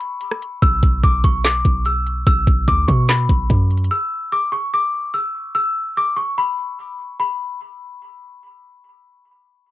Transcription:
0.00 0.58 B5 medium
0.00 closed hi-hat medium
0.21 closed hi-hat medium
0.31 cross-stick medium
0.42 closed hi-hat medium
0.62 0.82 B1 loud
0.62 1.01 E6 loud
0.62 kick loud
0.62 closed hi-hat medium
0.83 1.03 B1 loud
0.83 kick medium
0.83 closed hi-hat medium
1.03 1.23 B1 loud
1.03 1.20 D6 medium
1.03 kick medium
1.03 closed hi-hat medium
1.24 1.63 B1 loud
1.24 1.40 C#6 medium
1.24 kick medium
1.24 closed hi-hat medium
1.44 1.83 D6 medium
1.44 snare loud
1.44 clap medium
1.44 closed hi-hat medium
1.65 2.24 B1 loud
1.65 kick medium
1.65 closed hi-hat medium
1.85 2.24 E6 medium
1.85 closed hi-hat medium
2.07 closed hi-hat medium
2.27 2.46 B1 loud
2.27 2.65 E6 loud
2.27 kick loud
2.27 closed hi-hat medium
2.47 2.67 B1 loud
2.47 kick medium
2.47 closed hi-hat medium
2.68 2.88 D2 loud
2.68 2.84 D6 medium
2.68 kick medium
2.68 closed hi-hat medium
2.88 3.28 B2 loud
2.88 3.04 C#6 medium
2.88 kick medium
2.88 closed hi-hat medium
3.08 3.87 B5 medium
3.08 snare loud
3.08 clap medium
3.08 closed hi-hat medium
3.29 3.49 B1 loud
3.29 kick medium
3.29 closed hi-hat medium
3.50 3.89 F#2 loud
3.50 kick loud
3.50 closed hi-hat medium
3.71 closed hi-hat soft
3.77 closed hi-hat medium
3.84 closed hi-hat medium
3.91 4.30 E6 loud
4.32 4.49 D6 medium
4.52 4.69 C#6 medium
4.74 5.12 D6 medium
5.14 5.53 E6 medium
5.55 5.94 E6 loud
5.97 6.13 D6 medium
6.16 6.33 C#6 medium
6.38 7.16 B5 medium
7.20 8.39 B5 medium

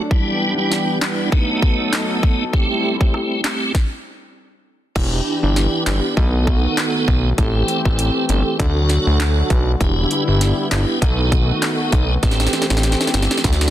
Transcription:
0.00 1.30 D4 medium
0.11 1.31 E3 medium
0.11 0.54 G3 medium
0.11 2.51 B3 medium
0.11 0.54 D4 medium
0.11 0.54 E4 medium
0.11 1.31 G4 medium
0.11 kick loud
0.58 0.98 G3 medium
0.58 0.99 D4 medium
0.58 0.99 E4 medium
0.72 snare medium
1.01 1.30 G3 medium
1.01 1.30 D4 medium
1.01 1.30 E4 medium
1.01 snare loud
1.01 clap medium
1.32 2.52 F#3 medium
1.32 2.45 A3 medium
1.32 2.45 B3 medium
1.32 2.52 D#4 medium
1.32 2.45 D#4 loud
1.32 3.72 A4 medium
1.32 kick medium
1.62 kick medium
1.93 snare loud
1.93 clap medium
2.23 kick medium
2.53 3.73 G3 medium
2.53 2.96 A3 medium
2.53 2.96 C4 medium
2.53 3.73 C4 medium
2.53 3.73 E4 medium
2.53 2.97 G4 medium
2.53 kick loud
3.00 3.41 A3 medium
3.00 3.41 C4 medium
3.00 3.41 G4 medium
3.00 kick medium
3.14 cross-stick medium
3.44 3.72 A3 medium
3.44 3.72 C4 medium
3.44 3.72 G4 medium
3.44 snare loud
3.44 clap medium
3.75 kick loud
3.75 snare medium
4.95 5.21 E1 loud
4.95 6.16 E3 medium
4.95 7.36 B3 medium
4.95 5.39 D4 medium
4.95 6.16 D4 medium
4.95 5.39 E4 medium
4.95 6.16 G4 medium
4.95 5.39 G4 loud
4.95 kick loud
4.95 crash medium
5.43 5.68 G1 medium
5.43 5.83 D4 medium
5.43 5.83 E4 medium
5.43 5.84 G4 medium
5.56 snare medium
5.86 6.01 G1 medium
5.86 6.15 D4 medium
5.86 6.15 E4 medium
5.86 6.15 G4 medium
5.86 snare loud
5.86 clap medium
6.17 6.67 B1 loud
6.17 7.37 D#3 medium
6.17 9.77 A3 medium
6.17 7.30 B3 medium
6.17 7.30 D#4 medium
6.17 7.37 F#4 medium
6.17 7.30 A4 loud
6.17 kick medium
6.47 kick medium
6.77 snare loud
6.77 clap medium
7.08 7.33 B1 medium
7.08 kick medium
7.38 7.63 A1 loud
7.38 8.58 E3 medium
7.38 7.81 C4 medium
7.38 8.58 C4 medium
7.38 7.82 G4 medium
7.38 8.58 G4 medium
7.38 7.82 A4 loud
7.38 kick loud
7.38 closed hi-hat medium
7.68 closed hi-hat medium
7.85 8.10 A1 medium
7.85 8.26 C4 medium
7.85 8.26 G4 medium
7.85 8.26 A4 medium
7.85 kick medium
7.99 closed hi-hat medium
8.29 8.43 G1 loud
8.29 8.57 C4 medium
8.29 8.57 G4 medium
8.29 8.57 A4 medium
8.29 closed hi-hat medium
8.59 8.99 D2 loud
8.59 10.99 D3 medium
8.59 9.79 F#3 medium
8.59 9.72 D4 medium
8.59 9.72 F#4 medium
8.59 9.79 F#4 medium
8.59 9.72 A4 loud
8.59 kick medium
8.59 closed hi-hat medium
8.89 snare medium
8.89 closed hi-hat medium
9.07 9.43 D2 medium
9.20 snare loud
9.20 clap medium
9.20 closed hi-hat medium
9.50 9.75 B1 loud
9.50 kick medium
9.50 closed hi-hat medium
9.80 10.06 E1 loud
9.80 11.01 G3 medium
9.80 12.21 B3 medium
9.80 10.24 D4 medium
9.80 10.24 E4 medium
9.80 11.01 E4 medium
9.80 10.24 G4 loud
9.80 kick loud
9.80 closed hi-hat medium
10.11 closed hi-hat medium
10.28 10.53 G1 medium
10.28 10.68 D4 medium
10.28 10.68 E4 medium
10.28 10.68 G4 medium
10.41 snare medium
10.41 closed hi-hat medium
10.71 10.86 G1 medium
10.71 10.99 D4 medium
10.71 11.00 E4 medium
10.71 11.00 G4 medium
10.71 snare loud
10.71 clap medium
10.71 closed hi-hat medium
11.01 11.52 B1 loud
11.01 12.22 D#3 medium
11.01 12.22 A3 medium
11.01 12.14 B3 medium
11.01 12.15 D#4 medium
11.01 12.22 F#4 medium
11.01 12.15 A4 loud
11.01 kick medium
11.01 closed hi-hat medium
11.32 kick medium
11.32 closed hi-hat medium
11.62 snare loud
11.62 clap medium
11.62 closed hi-hat medium
11.92 12.18 B1 medium
11.92 kick medium
11.92 closed hi-hat soft
12.23 12.48 A1 loud
12.23 13.43 E3 medium
12.23 13.70 A3 medium
12.23 12.66 C4 medium
12.23 13.43 C4 medium
12.23 12.66 G4 medium
12.23 13.43 G4 medium
12.23 12.66 A4 loud
12.23 kick loud
12.23 snare medium
12.23 closed hi-hat medium
12.31 snare medium
12.40 snare medium
12.47 snare medium
12.53 snare medium
12.53 closed hi-hat medium
12.62 snare medium
12.70 12.95 A1 medium
12.70 13.11 C4 medium
12.70 13.11 G4 medium
12.70 13.11 A4 medium
12.70 snare medium
12.77 snare medium
12.83 snare medium
12.83 closed hi-hat medium
12.92 snare medium
13.01 snare medium
13.07 snare medium
13.13 13.28 G1 loud
13.13 13.42 C4 medium
13.13 13.42 G4 medium
13.13 13.42 A4 medium
13.13 snare medium
13.13 closed hi-hat medium
13.22 snare medium
13.31 snare medium
13.38 snare medium
13.44 13.70 D2 loud
13.44 13.70 D3 medium
13.44 13.70 F#3 medium
13.44 13.70 D4 medium
13.44 13.70 F#4 medium
13.44 13.70 A4 loud
13.44 kick medium
13.44 snare medium
13.44 closed hi-hat medium
13.53 snare medium
13.61 snare medium

